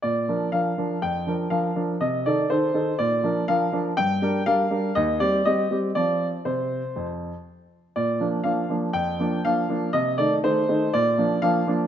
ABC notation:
X:1
M:4/4
L:1/8
Q:1/4=121
K:Bb
V:1 name="Grand piano"
d2 f2 g2 f2 | e d c2 d2 f2 | g2 f2 e d e2 | d2 c4 z2 |
d2 f2 g2 f2 | e d c2 d2 f2 |]
V:2 name="Grand piano"
B,, [F,DB] [F,DB] [F,DB] F,, [F,DB] [F,DB] [F,DB] | C, [E,EA] [E,EA] [E,EA] B,, [F,DB] [F,DB] [F,DB] | G,, [G,DB] [G,DB] [G,DB] E,, [G,CG] [G,CG] [G,CG] | [F,CF]2 C,2 F,,2 z2 |
B,, [F,B,D] [F,B,D] [F,B,D] F,, [F,B,D] [F,B,D] [F,B,D] | C, [E,A,E] [E,A,E] [E,A,E] B,, [F,B,D] [F,B,D] [F,B,D] |]